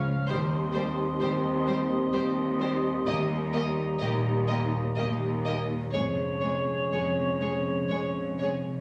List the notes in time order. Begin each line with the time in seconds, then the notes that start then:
Already playing: C#2 G#2 F3 C#4 G#4 F5 C#6
0.27 D#2 G3 C4 G4 C5 D#5 C6
0.31 D#2
0.72 G3 G4 C5
1.19 D#2 G3 G4 C5
1.24 D#3
1.67 G3 G4 C5
2.13 D#2 G3 G4 C5
2.59 G3 G4 C5
3.06 D#2 A#3 G4 D#5 A#5
3.53 A#3 G4 D#5
3.99 D#2 A#2 A#3 G4 D#5
4.48 A#3 G4 D#5
4.96 D#2 A#3 G4 D#5
5.46 A#3 G4 D#5
5.92 F1 F2 G#3 C#4 G#4 C#5 C#6
6.41 G#3 G#4 C#5
6.92 F1 F2 F3 G#3 G#4 C#5
7.41 G#3 G#4 C#5
7.89 F1 F2 G#3 G#4 C#5
8.39 G#3 G#4 C#5